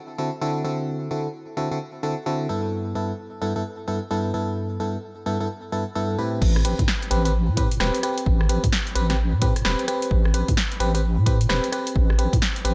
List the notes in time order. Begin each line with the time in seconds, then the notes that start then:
0.18 D3 C4 E4 F#4 A4
0.41 D3 C4 E4 F#4 A4
0.65 D3 C4 E4 F#4 A4
1.11 D3 C4 E4 F#4 A4
1.57 D3 C4 E4 F#4 A4
1.71 D3 C4 E4 F#4 A4
2.03 D3 C4 E4 F#4 A4
2.26 D3 C4 E4 F#4 A4
2.49 G2 B3 E4 A4
2.95 G2 B3 E4 A4
3.41 G2 B3 E4 A4
3.56 G2 B3 E4 A4
3.88 G2 B3 E4 A4
4.11 G2 B3 E4 A4
4.34 G2 B3 E4 A4
4.80 G2 B3 E4 A4
5.26 G2 B3 E4 A4
5.40 G2 B3 E4 A4
5.72 G2 B3 E4 A4
5.95 G2 B3 E4 A4
6.18 A2 C4 E4 G4 B4
6.42 A1, kick, crash
6.56 cross-stick
6.65 C4 G4 B4, closed hi-hat
6.79 A2, kick, closed hi-hat
6.88 snare
7.02 closed hi-hat
7.11 A1 C4 G4 B4, closed hi-hat
7.25 C4 G4 B4, closed hi-hat
7.48 A2
7.57 C4 G4 B4, kick, closed hi-hat
7.71 closed hi-hat
7.80 E1 C4 G4 B4, cross-stick, snare
7.95 closed hi-hat
8.03 C4 G4 B4, cross-stick, closed hi-hat
8.18 closed hi-hat
8.26 A1, kick
8.41 cross-stick
8.49 C4 G4 B4, closed hi-hat
8.64 A2, kick, closed hi-hat
8.73 snare
8.87 closed hi-hat
8.95 A1 C4 G4 B4, closed hi-hat
9.10 C4 G4 B4, snare, closed hi-hat
9.33 A2
9.42 C4 G4 B4, kick, closed hi-hat
9.56 cross-stick, closed hi-hat
9.65 E1 C4 G4 B4, snare
9.79 closed hi-hat
9.88 C4 G4 B4, cross-stick, closed hi-hat
10.02 closed hi-hat
10.11 A1, kick
10.25 cross-stick
10.34 C4 G4 B4, closed hi-hat
10.48 A2, kick, closed hi-hat
10.57 snare
10.72 closed hi-hat
10.80 A1 C4 G4 B4, closed hi-hat
10.94 C4 G4 B4, closed hi-hat
11.18 A2
11.26 C4 G4 B4, kick, closed hi-hat
11.41 closed hi-hat
11.49 E1 C4 G4 B4, cross-stick, snare
11.64 closed hi-hat
11.72 C4 G4 B4, cross-stick, closed hi-hat
11.87 closed hi-hat
11.96 A1, kick
12.10 cross-stick
12.18 C4 G4 B4, closed hi-hat
12.33 A2, kick, closed hi-hat
12.42 snare
12.56 closed hi-hat
12.65 A1 C4 G4 B4, closed hi-hat